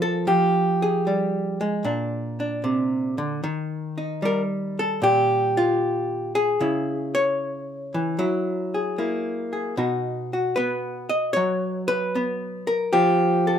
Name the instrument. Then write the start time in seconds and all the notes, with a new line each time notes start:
hollow-body jazz guitar
Already playing: A#2 F3 D4 A#4
0.02 A4
0.27 F3 G4
0.82 G#4
1.07 G3
1.61 G#3
1.84 A#2 D4
2.40 D4
2.64 C3
3.18 D3
3.44 D#3
3.98 D#4
4.22 G3 A#4
4.79 A4
5.02 A#2 G4
5.57 F4
6.35 G#4
6.60 C#3 E4
7.15 C#5
7.94 E3
8.19 F#3 E4
8.74 G#4
8.98 A#3 E4
9.53 G#4
9.77 B2 D#4 F#4
10.33 F#4
10.56 B3 B4
11.09 D#5
11.33 F#3 C#5
11.88 B4
12.15 B3
12.67 A#4
12.93 F3 G4
13.47 A4